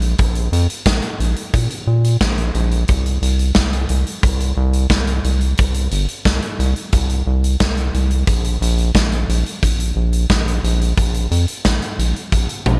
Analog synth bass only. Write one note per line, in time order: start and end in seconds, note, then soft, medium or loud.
0.00 0.15 A#1 medium
0.19 0.49 A#1 loud
0.52 0.67 F2 medium
0.86 1.01 A#1 medium
1.20 1.35 A#1 medium
1.54 1.69 A#2 medium
1.87 2.17 A#2 medium
2.21 2.51 A#1 loud
2.55 2.84 A#1 medium
2.89 3.18 C2 loud
3.22 3.52 C2 loud
3.56 3.86 C2 loud
3.90 4.04 C2 medium
4.23 4.53 C2 medium
4.57 4.87 C2 medium
4.90 5.20 C2 loud
5.24 5.54 C2 medium
5.59 5.88 C2 loud
5.92 6.07 G1 loud
6.25 6.40 C2 medium
6.59 6.74 C2 medium
6.93 7.23 C2 medium
7.27 7.56 C2 loud
7.60 7.90 C2 loud
7.94 8.24 C2 medium
8.27 8.57 A#1 loud
8.61 8.91 A#1 loud
8.95 9.25 A#1 loud
9.29 9.44 A#1 medium
9.63 9.92 A#1 medium
9.96 10.26 A#1 loud
10.30 10.60 A#1 loud
10.64 10.93 A#1 medium
10.97 11.27 A#1 loud
11.31 11.46 F2 medium
11.65 11.80 A#1 loud
11.99 12.13 A#1 medium
12.32 12.47 A#1 medium
12.66 12.80 A#1 medium